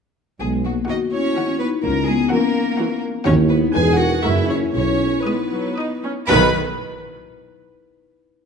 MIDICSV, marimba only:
0, 0, Header, 1, 2, 480
1, 0, Start_track
1, 0, Key_signature, 5, "major"
1, 0, Tempo, 480000
1, 405, Time_signature, 3, 2, 24, 8
1, 4241, Tempo, 510638
1, 8202, End_track
2, 0, Start_track
2, 0, Title_t, "Marimba"
2, 0, Program_c, 0, 12
2, 395, Note_on_c, 0, 59, 51
2, 624, Note_off_c, 0, 59, 0
2, 643, Note_on_c, 0, 58, 45
2, 867, Note_off_c, 0, 58, 0
2, 882, Note_on_c, 0, 66, 56
2, 1107, Note_off_c, 0, 66, 0
2, 1128, Note_on_c, 0, 64, 60
2, 1570, Note_off_c, 0, 64, 0
2, 1600, Note_on_c, 0, 63, 58
2, 1821, Note_off_c, 0, 63, 0
2, 1839, Note_on_c, 0, 61, 61
2, 2060, Note_off_c, 0, 61, 0
2, 2071, Note_on_c, 0, 59, 70
2, 2294, Note_off_c, 0, 59, 0
2, 2319, Note_on_c, 0, 61, 70
2, 2989, Note_off_c, 0, 61, 0
2, 3269, Note_on_c, 0, 64, 73
2, 3491, Note_off_c, 0, 64, 0
2, 3516, Note_on_c, 0, 63, 63
2, 3737, Note_off_c, 0, 63, 0
2, 3753, Note_on_c, 0, 71, 76
2, 3978, Note_off_c, 0, 71, 0
2, 3984, Note_on_c, 0, 70, 80
2, 4218, Note_off_c, 0, 70, 0
2, 4234, Note_on_c, 0, 68, 64
2, 4457, Note_off_c, 0, 68, 0
2, 4465, Note_on_c, 0, 64, 54
2, 4694, Note_off_c, 0, 64, 0
2, 4716, Note_on_c, 0, 64, 63
2, 5166, Note_off_c, 0, 64, 0
2, 5197, Note_on_c, 0, 63, 42
2, 5891, Note_off_c, 0, 63, 0
2, 6164, Note_on_c, 0, 71, 75
2, 6437, Note_off_c, 0, 71, 0
2, 8202, End_track
0, 0, End_of_file